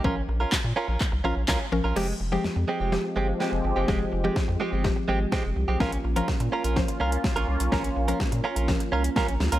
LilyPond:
<<
  \new Staff \with { instrumentName = "Clean electric guitar" } { \time 4/4 \key f \minor \tempo 4 = 125 <des' f' bes'>16 r8 <des' f' bes'>16 r8 <des' f' bes'>16 <des' f' bes'>16 r8 <des' f' bes'>16 r16 <des' f' bes'>16 r8 <des' f' bes'>16 | <aes c' g'>16 r8 <aes c' g'>16 r8 <aes c' g'>16 <aes c' g'>16 r8 <aes c' g'>16 r16 <aes c' g'>16 r8 <aes c' g'>16 | <aes c' g'>16 r8 <aes c' g'>16 r8 <aes c' g'>16 <aes c' g'>16 r8 <aes c' g'>16 r16 <aes c' g'>16 r8 <aes c' g'>16 | <des' f' bes'>16 r8 <des' f' bes'>16 r8 <des' f' bes'>16 <des' f' bes'>16 r8 <des' f' bes'>16 r8 <des' f' bes'>16 r8 |
<des' f' bes'>16 r8 <des' f' bes'>16 r8 <des' f' bes'>16 <des' f' bes'>16 r8 <des' f' bes'>16 r16 <des' f' bes'>16 r8 <des' f' bes'>16 | }
  \new Staff \with { instrumentName = "Synth pluck" } { \time 4/4 \key f \minor <f des' bes'>4 r4. <f des' f'>8 r8 <f des' bes'>16 r16 | <f aes g'>8 r16 <f aes g'>8. r8 <f aes g'>4 r4 | <f aes g'>8 r16 <f aes g'>8. r8 <f aes g'>4 r4 | <f des' bes'>8 r16 <f des' bes'>8. r8 <f des' c''>4 r4 |
<f des' bes'>8 r16 <f des' bes'>8. r8 <f des' bes'>4 r4 | }
  \new Staff \with { instrumentName = "Analog synth pad" } { \time 4/4 \key f \minor r1 | <f aes c' g'>1~ | <f aes c' g'>1 | <bes des' f'>1~ |
<bes des' f'>1 | }
  \new Staff \with { instrumentName = "Analog synth bass" } { \clef bass \time 4/4 \key f \minor bes,,8 bes,,8 bes,16 bes,16 r16 bes,,16 r16 c,16 bes,,16 bes,,16 c,16 r16 bes,,16 bes,,16 | f,,8 f,,8 f,16 f,16 r16 f,,8 r16 g,,8 r16 f,,16 g,,16 ges,,16 | f,,8 f,,8 f,16 f,16 r16 g,,8 r16 aes,,8 r16 f,,16 c,16 b,,16 | bes,,8 bes,,8 bes,16 bes,16 r16 bes,,8 r16 c,8 r16 bes,,16 c,16 b,,16 |
bes,,8 bes,,8 bes,16 bes,16 r16 bes,,8 r16 c,8 r16 bes,,16 d,16 des,16 | }
  \new DrumStaff \with { instrumentName = "Drums" } \drummode { \time 4/4 bd4 <hc bd sn>4 <hc bd>4 <hc bd sn>4 | <cymc sn>4 sn4 sn4 sn4 | <bd sn>4 <bd sn>4 <bd sn>4 <bd sn>4 | <bd sn>16 hh8 hh16 <bd sn>16 hh8 hh16 <bd sn>16 hh8 hh16 <bd sn>16 hh8 hh16 |
<bd sn>16 hh8 hh16 <bd sn>16 hh8 hh16 <bd sn>16 hh8 hh16 <bd sn>16 hh16 sn16 hh16 | }
>>